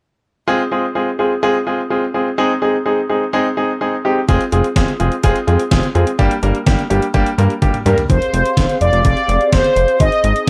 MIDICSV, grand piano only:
0, 0, Header, 1, 2, 480
1, 0, Start_track
1, 0, Tempo, 476190
1, 480, Time_signature, 4, 2, 24, 8
1, 10583, End_track
2, 0, Start_track
2, 0, Title_t, "Grand piano"
2, 0, Program_c, 0, 0
2, 479, Note_on_c, 0, 56, 98
2, 479, Note_on_c, 0, 60, 92
2, 479, Note_on_c, 0, 65, 93
2, 480, Note_on_c, 0, 68, 110
2, 613, Note_off_c, 0, 56, 0
2, 613, Note_off_c, 0, 60, 0
2, 613, Note_off_c, 0, 65, 0
2, 613, Note_off_c, 0, 68, 0
2, 720, Note_on_c, 0, 56, 77
2, 720, Note_on_c, 0, 65, 72
2, 720, Note_on_c, 0, 68, 86
2, 721, Note_on_c, 0, 60, 69
2, 853, Note_off_c, 0, 56, 0
2, 854, Note_off_c, 0, 60, 0
2, 854, Note_off_c, 0, 65, 0
2, 854, Note_off_c, 0, 68, 0
2, 959, Note_on_c, 0, 60, 68
2, 960, Note_on_c, 0, 56, 77
2, 960, Note_on_c, 0, 65, 68
2, 960, Note_on_c, 0, 68, 84
2, 1093, Note_off_c, 0, 56, 0
2, 1093, Note_off_c, 0, 60, 0
2, 1093, Note_off_c, 0, 65, 0
2, 1093, Note_off_c, 0, 68, 0
2, 1199, Note_on_c, 0, 65, 70
2, 1199, Note_on_c, 0, 68, 86
2, 1200, Note_on_c, 0, 56, 75
2, 1200, Note_on_c, 0, 60, 73
2, 1333, Note_off_c, 0, 56, 0
2, 1333, Note_off_c, 0, 65, 0
2, 1333, Note_off_c, 0, 68, 0
2, 1334, Note_off_c, 0, 60, 0
2, 1439, Note_on_c, 0, 60, 88
2, 1440, Note_on_c, 0, 56, 96
2, 1440, Note_on_c, 0, 65, 87
2, 1440, Note_on_c, 0, 68, 109
2, 1573, Note_off_c, 0, 60, 0
2, 1573, Note_off_c, 0, 65, 0
2, 1573, Note_off_c, 0, 68, 0
2, 1574, Note_off_c, 0, 56, 0
2, 1680, Note_on_c, 0, 56, 77
2, 1680, Note_on_c, 0, 60, 70
2, 1680, Note_on_c, 0, 65, 72
2, 1680, Note_on_c, 0, 68, 85
2, 1813, Note_off_c, 0, 56, 0
2, 1813, Note_off_c, 0, 60, 0
2, 1813, Note_off_c, 0, 65, 0
2, 1813, Note_off_c, 0, 68, 0
2, 1918, Note_on_c, 0, 56, 77
2, 1919, Note_on_c, 0, 60, 70
2, 1919, Note_on_c, 0, 65, 72
2, 1919, Note_on_c, 0, 68, 83
2, 2053, Note_off_c, 0, 56, 0
2, 2053, Note_off_c, 0, 60, 0
2, 2053, Note_off_c, 0, 65, 0
2, 2053, Note_off_c, 0, 68, 0
2, 2160, Note_on_c, 0, 56, 76
2, 2160, Note_on_c, 0, 65, 67
2, 2160, Note_on_c, 0, 68, 84
2, 2161, Note_on_c, 0, 60, 71
2, 2293, Note_off_c, 0, 65, 0
2, 2294, Note_off_c, 0, 56, 0
2, 2294, Note_off_c, 0, 60, 0
2, 2294, Note_off_c, 0, 68, 0
2, 2400, Note_on_c, 0, 56, 103
2, 2400, Note_on_c, 0, 60, 94
2, 2400, Note_on_c, 0, 63, 96
2, 2400, Note_on_c, 0, 68, 112
2, 2533, Note_off_c, 0, 56, 0
2, 2533, Note_off_c, 0, 60, 0
2, 2533, Note_off_c, 0, 63, 0
2, 2534, Note_off_c, 0, 68, 0
2, 2639, Note_on_c, 0, 56, 78
2, 2639, Note_on_c, 0, 60, 70
2, 2639, Note_on_c, 0, 68, 87
2, 2640, Note_on_c, 0, 63, 72
2, 2773, Note_off_c, 0, 56, 0
2, 2773, Note_off_c, 0, 60, 0
2, 2773, Note_off_c, 0, 68, 0
2, 2774, Note_off_c, 0, 63, 0
2, 2879, Note_on_c, 0, 56, 78
2, 2879, Note_on_c, 0, 60, 73
2, 2879, Note_on_c, 0, 63, 73
2, 2879, Note_on_c, 0, 68, 83
2, 3013, Note_off_c, 0, 56, 0
2, 3013, Note_off_c, 0, 60, 0
2, 3013, Note_off_c, 0, 63, 0
2, 3013, Note_off_c, 0, 68, 0
2, 3119, Note_on_c, 0, 68, 84
2, 3120, Note_on_c, 0, 63, 71
2, 3121, Note_on_c, 0, 56, 78
2, 3121, Note_on_c, 0, 60, 73
2, 3253, Note_off_c, 0, 63, 0
2, 3253, Note_off_c, 0, 68, 0
2, 3254, Note_off_c, 0, 56, 0
2, 3254, Note_off_c, 0, 60, 0
2, 3359, Note_on_c, 0, 56, 101
2, 3359, Note_on_c, 0, 60, 91
2, 3359, Note_on_c, 0, 63, 89
2, 3359, Note_on_c, 0, 68, 110
2, 3493, Note_off_c, 0, 56, 0
2, 3493, Note_off_c, 0, 60, 0
2, 3493, Note_off_c, 0, 63, 0
2, 3493, Note_off_c, 0, 68, 0
2, 3599, Note_on_c, 0, 56, 77
2, 3599, Note_on_c, 0, 60, 70
2, 3599, Note_on_c, 0, 63, 74
2, 3600, Note_on_c, 0, 68, 88
2, 3733, Note_off_c, 0, 56, 0
2, 3733, Note_off_c, 0, 60, 0
2, 3733, Note_off_c, 0, 63, 0
2, 3733, Note_off_c, 0, 68, 0
2, 3840, Note_on_c, 0, 56, 79
2, 3840, Note_on_c, 0, 60, 73
2, 3840, Note_on_c, 0, 63, 72
2, 3840, Note_on_c, 0, 68, 88
2, 3973, Note_off_c, 0, 56, 0
2, 3973, Note_off_c, 0, 63, 0
2, 3974, Note_off_c, 0, 60, 0
2, 3974, Note_off_c, 0, 68, 0
2, 4079, Note_on_c, 0, 63, 68
2, 4080, Note_on_c, 0, 56, 75
2, 4080, Note_on_c, 0, 60, 72
2, 4081, Note_on_c, 0, 67, 87
2, 4213, Note_off_c, 0, 60, 0
2, 4213, Note_off_c, 0, 63, 0
2, 4214, Note_off_c, 0, 56, 0
2, 4214, Note_off_c, 0, 67, 0
2, 4319, Note_on_c, 0, 56, 102
2, 4319, Note_on_c, 0, 60, 96
2, 4319, Note_on_c, 0, 65, 96
2, 4319, Note_on_c, 0, 68, 116
2, 4453, Note_off_c, 0, 56, 0
2, 4453, Note_off_c, 0, 60, 0
2, 4453, Note_off_c, 0, 65, 0
2, 4453, Note_off_c, 0, 68, 0
2, 4558, Note_on_c, 0, 65, 72
2, 4559, Note_on_c, 0, 56, 79
2, 4559, Note_on_c, 0, 60, 73
2, 4559, Note_on_c, 0, 68, 86
2, 4693, Note_off_c, 0, 56, 0
2, 4693, Note_off_c, 0, 60, 0
2, 4693, Note_off_c, 0, 65, 0
2, 4693, Note_off_c, 0, 68, 0
2, 4798, Note_on_c, 0, 56, 82
2, 4798, Note_on_c, 0, 60, 70
2, 4798, Note_on_c, 0, 65, 72
2, 4798, Note_on_c, 0, 68, 90
2, 4932, Note_off_c, 0, 56, 0
2, 4932, Note_off_c, 0, 60, 0
2, 4932, Note_off_c, 0, 65, 0
2, 4932, Note_off_c, 0, 68, 0
2, 5037, Note_on_c, 0, 56, 79
2, 5037, Note_on_c, 0, 60, 75
2, 5037, Note_on_c, 0, 65, 73
2, 5037, Note_on_c, 0, 68, 87
2, 5172, Note_off_c, 0, 56, 0
2, 5172, Note_off_c, 0, 60, 0
2, 5172, Note_off_c, 0, 65, 0
2, 5172, Note_off_c, 0, 68, 0
2, 5277, Note_on_c, 0, 56, 98
2, 5278, Note_on_c, 0, 60, 89
2, 5278, Note_on_c, 0, 65, 91
2, 5278, Note_on_c, 0, 68, 113
2, 5412, Note_off_c, 0, 56, 0
2, 5413, Note_off_c, 0, 60, 0
2, 5413, Note_off_c, 0, 65, 0
2, 5413, Note_off_c, 0, 68, 0
2, 5516, Note_on_c, 0, 60, 75
2, 5517, Note_on_c, 0, 56, 81
2, 5517, Note_on_c, 0, 65, 74
2, 5517, Note_on_c, 0, 68, 87
2, 5652, Note_off_c, 0, 56, 0
2, 5652, Note_off_c, 0, 60, 0
2, 5652, Note_off_c, 0, 65, 0
2, 5652, Note_off_c, 0, 68, 0
2, 5757, Note_on_c, 0, 56, 79
2, 5757, Note_on_c, 0, 60, 73
2, 5757, Note_on_c, 0, 65, 74
2, 5757, Note_on_c, 0, 68, 87
2, 5892, Note_off_c, 0, 56, 0
2, 5892, Note_off_c, 0, 60, 0
2, 5892, Note_off_c, 0, 65, 0
2, 5892, Note_off_c, 0, 68, 0
2, 5996, Note_on_c, 0, 60, 73
2, 5996, Note_on_c, 0, 68, 87
2, 5997, Note_on_c, 0, 56, 79
2, 5997, Note_on_c, 0, 65, 71
2, 6132, Note_off_c, 0, 56, 0
2, 6132, Note_off_c, 0, 60, 0
2, 6132, Note_off_c, 0, 65, 0
2, 6132, Note_off_c, 0, 68, 0
2, 6237, Note_on_c, 0, 58, 95
2, 6237, Note_on_c, 0, 62, 92
2, 6238, Note_on_c, 0, 55, 102
2, 6238, Note_on_c, 0, 67, 113
2, 6372, Note_off_c, 0, 55, 0
2, 6372, Note_off_c, 0, 58, 0
2, 6372, Note_off_c, 0, 62, 0
2, 6372, Note_off_c, 0, 67, 0
2, 6478, Note_on_c, 0, 55, 80
2, 6478, Note_on_c, 0, 58, 75
2, 6478, Note_on_c, 0, 62, 74
2, 6479, Note_on_c, 0, 70, 90
2, 6612, Note_off_c, 0, 58, 0
2, 6612, Note_off_c, 0, 62, 0
2, 6613, Note_off_c, 0, 55, 0
2, 6613, Note_off_c, 0, 70, 0
2, 6718, Note_on_c, 0, 55, 79
2, 6718, Note_on_c, 0, 67, 86
2, 6719, Note_on_c, 0, 58, 75
2, 6719, Note_on_c, 0, 62, 72
2, 6852, Note_off_c, 0, 55, 0
2, 6853, Note_off_c, 0, 58, 0
2, 6853, Note_off_c, 0, 62, 0
2, 6853, Note_off_c, 0, 67, 0
2, 6956, Note_on_c, 0, 55, 78
2, 6956, Note_on_c, 0, 58, 71
2, 6956, Note_on_c, 0, 62, 72
2, 6956, Note_on_c, 0, 67, 90
2, 7091, Note_off_c, 0, 55, 0
2, 7091, Note_off_c, 0, 67, 0
2, 7092, Note_off_c, 0, 58, 0
2, 7092, Note_off_c, 0, 62, 0
2, 7198, Note_on_c, 0, 55, 99
2, 7198, Note_on_c, 0, 62, 90
2, 7198, Note_on_c, 0, 67, 110
2, 7199, Note_on_c, 0, 58, 92
2, 7332, Note_off_c, 0, 62, 0
2, 7333, Note_off_c, 0, 55, 0
2, 7333, Note_off_c, 0, 58, 0
2, 7333, Note_off_c, 0, 67, 0
2, 7439, Note_on_c, 0, 55, 82
2, 7439, Note_on_c, 0, 58, 75
2, 7439, Note_on_c, 0, 62, 75
2, 7439, Note_on_c, 0, 70, 88
2, 7573, Note_off_c, 0, 55, 0
2, 7573, Note_off_c, 0, 58, 0
2, 7573, Note_off_c, 0, 62, 0
2, 7573, Note_off_c, 0, 70, 0
2, 7679, Note_on_c, 0, 58, 73
2, 7680, Note_on_c, 0, 55, 83
2, 7680, Note_on_c, 0, 62, 74
2, 7680, Note_on_c, 0, 67, 89
2, 7813, Note_off_c, 0, 55, 0
2, 7813, Note_off_c, 0, 58, 0
2, 7813, Note_off_c, 0, 62, 0
2, 7813, Note_off_c, 0, 67, 0
2, 7920, Note_on_c, 0, 55, 77
2, 7920, Note_on_c, 0, 58, 72
2, 7920, Note_on_c, 0, 62, 71
2, 7920, Note_on_c, 0, 67, 85
2, 8053, Note_off_c, 0, 58, 0
2, 8053, Note_off_c, 0, 67, 0
2, 8054, Note_off_c, 0, 55, 0
2, 8054, Note_off_c, 0, 62, 0
2, 10583, End_track
0, 0, End_of_file